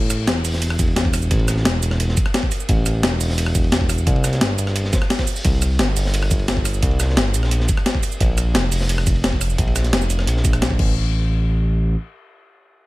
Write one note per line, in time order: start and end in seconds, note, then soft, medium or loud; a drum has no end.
0.00 0.29 A1 loud
0.10 cross-stick soft
0.10 closed hi-hat medium
0.10 ride medium
0.10 shaker medium
0.27 0.43 E1 loud
0.27 snare loud
0.27 closed hi-hat loud
0.27 ride medium
0.45 0.78 E1 medium
0.45 closed hi-hat medium
0.45 open hi-hat medium
0.45 shaker medium
0.54 snare soft
0.62 closed hi-hat loud
0.62 ride medium
0.70 cross-stick medium
0.79 1.29 E1 medium
0.79 kick loud
0.79 closed hi-hat medium
0.79 ride medium
0.79 shaker medium
0.88 ride soft
0.96 snare loud
0.96 closed hi-hat loud
0.96 ride medium
1.05 kick medium
1.14 cross-stick medium
1.14 open hi-hat medium
1.14 ride medium
1.14 shaker medium
1.22 shaker soft
1.31 1.67 A1 loud
1.31 kick loud
1.31 closed hi-hat medium
1.31 ride loud
1.39 ride soft
1.48 cross-stick medium
1.48 snare soft
1.48 closed hi-hat medium
1.48 ride medium
1.48 shaker medium
1.57 snare soft
1.65 1.81 E1 loud
1.65 snare loud
1.65 closed hi-hat medium
1.65 ride medium
1.83 2.16 E1 medium
1.83 closed hi-hat medium
1.83 ride medium
1.83 shaker medium
1.91 cross-stick soft
1.91 snare soft
2.00 closed hi-hat medium
2.00 ride medium
2.09 snare soft
2.17 kick loud
2.17 closed hi-hat medium
2.17 ride medium
2.17 shaker medium
2.26 cross-stick medium
2.34 snare loud
2.34 closed hi-hat medium
2.34 ride medium
2.43 kick medium
2.52 open hi-hat medium
2.52 ride medium
2.52 shaker medium
2.60 shaker soft
2.69 3.05 A1 loud
2.69 kick loud
2.69 closed hi-hat medium
2.69 ride medium
2.86 cross-stick soft
2.86 closed hi-hat medium
2.86 ride medium
2.86 shaker medium
3.03 3.19 E1 loud
3.03 snare loud
3.03 closed hi-hat medium
3.03 ride medium
3.20 3.54 E1 medium
3.20 closed hi-hat medium
3.20 open hi-hat medium
3.20 shaker medium
3.29 snare soft
3.38 closed hi-hat medium
3.38 ride loud
3.46 cross-stick soft
3.55 4.05 E1 medium
3.55 kick loud
3.55 closed hi-hat medium
3.55 ride medium
3.55 shaker medium
3.64 ride soft
3.72 snare loud
3.72 closed hi-hat medium
3.72 ride medium
3.81 kick medium
3.89 cross-stick medium
3.89 open hi-hat medium
3.89 ride medium
3.89 shaker medium
3.98 shaker soft
4.07 4.42 C2 loud
4.07 kick loud
4.07 closed hi-hat medium
4.07 ride medium
4.16 ride soft
4.24 cross-stick soft
4.24 snare soft
4.24 closed hi-hat medium
4.24 ride medium
4.24 shaker medium
4.33 snare soft
4.33 closed hi-hat soft
4.41 4.57 G1 loud
4.41 snare loud
4.41 closed hi-hat medium
4.41 ride medium
4.58 4.92 G1 medium
4.58 closed hi-hat medium
4.58 ride medium
4.58 shaker medium
4.67 cross-stick soft
4.67 snare soft
4.76 closed hi-hat medium
4.76 ride medium
4.84 snare soft
4.93 kick loud
4.93 snare loud
4.93 closed hi-hat medium
4.93 ride medium
4.93 shaker medium
5.02 cross-stick medium
5.10 snare loud
5.10 closed hi-hat medium
5.10 open hi-hat medium
5.19 kick medium
5.19 snare loud
5.19 ride medium
5.27 open hi-hat medium
5.27 shaker medium
5.36 open hi-hat medium
5.36 shaker soft
5.45 5.81 C2 loud
5.45 kick loud
5.45 closed hi-hat medium
5.45 ride loud
5.62 cross-stick soft
5.62 closed hi-hat medium
5.62 ride medium
5.62 shaker medium
5.79 5.95 G1 loud
5.79 snare loud
5.79 closed hi-hat medium
5.79 ride medium
5.96 6.30 G1 medium
5.96 closed hi-hat medium
5.96 open hi-hat medium
5.96 shaker medium
6.05 snare soft
6.14 closed hi-hat medium
6.14 ride loud
6.23 cross-stick soft
6.31 6.81 G1 medium
6.31 kick loud
6.31 closed hi-hat medium
6.31 ride medium
6.31 shaker medium
6.39 ride soft
6.48 snare loud
6.48 closed hi-hat medium
6.48 ride medium
6.57 kick medium
6.65 cross-stick medium
6.65 open hi-hat medium
6.65 ride medium
6.65 shaker medium
6.74 shaker soft
6.83 7.19 C2 loud
6.83 kick loud
6.83 closed hi-hat medium
6.83 ride medium
6.91 ride soft
7.00 cross-stick soft
7.00 snare soft
7.00 closed hi-hat medium
7.00 ride medium
7.00 shaker medium
7.09 snare soft
7.17 7.36 G1 loud
7.17 snare loud
7.17 closed hi-hat medium
7.17 ride medium
7.34 7.67 A#1 medium
7.34 closed hi-hat medium
7.34 ride medium
7.34 shaker medium
7.43 cross-stick soft
7.43 snare soft
7.51 closed hi-hat medium
7.51 ride medium
7.60 snare soft
7.69 kick loud
7.69 closed hi-hat medium
7.69 ride medium
7.69 shaker medium
7.77 cross-stick medium
7.86 snare loud
7.86 closed hi-hat medium
7.86 ride medium
7.95 kick medium
8.03 open hi-hat medium
8.03 ride medium
8.03 shaker medium
8.12 shaker soft
8.20 8.56 A#1 loud
8.20 kick loud
8.20 closed hi-hat loud
8.20 ride medium
8.38 cross-stick soft
8.38 closed hi-hat medium
8.38 ride medium
8.38 shaker medium
8.55 8.70 F1 loud
8.55 snare loud
8.55 closed hi-hat medium
8.55 ride medium
8.72 9.05 F1 medium
8.72 closed hi-hat medium
8.72 open hi-hat medium
8.72 shaker medium
8.81 snare medium
8.89 closed hi-hat medium
8.89 ride medium
8.98 cross-stick soft
9.07 9.57 F1 medium
9.07 kick loud
9.07 closed hi-hat medium
9.07 ride medium
9.07 shaker medium
9.15 ride soft
9.24 snare loud
9.24 closed hi-hat loud
9.24 ride medium
9.33 kick medium
9.41 cross-stick medium
9.41 open hi-hat medium
9.41 ride medium
9.41 shaker medium
9.50 shaker soft
9.58 9.94 A#1 loud
9.58 kick loud
9.58 closed hi-hat loud
9.58 ride medium
9.67 ride soft
9.75 cross-stick medium
9.75 snare soft
9.75 closed hi-hat medium
9.75 ride medium
9.75 shaker medium
9.84 snare soft
9.84 closed hi-hat soft
9.93 10.08 F1 loud
9.93 snare loud
9.93 closed hi-hat loud
9.93 ride medium
10.02 shaker soft
10.10 10.27 F1 medium
10.10 closed hi-hat medium
10.10 ride medium
10.10 shaker medium
10.19 cross-stick soft
10.19 snare soft
10.27 10.79 A#1 medium
10.27 closed hi-hat loud
10.27 ride medium
10.37 snare soft
10.44 kick loud
10.44 closed hi-hat medium
10.44 ride medium
10.44 shaker medium
10.53 cross-stick medium
10.53 closed hi-hat soft
10.62 snare loud
10.62 closed hi-hat medium
10.62 ride medium
10.71 kick medium
10.79 11.96 A1 medium
10.79 kick loud
10.79 crash medium